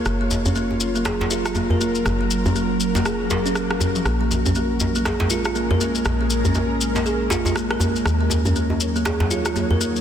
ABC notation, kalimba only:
X:1
M:4/4
L:1/16
Q:"Swing 16ths" 1/4=120
K:Bbm
V:1 name="Kalimba"
B, B, z D B, z2 B, A z F F B, B B, z | B, B, z D B, z2 B, A z B D D D D F, | B, B, z D B, z2 B, A z F F B, B B, z | B, B, z D B, z2 B, A z F F B, B B, z |
B, B, z D B, z2 B, A z F F B, B B, z |]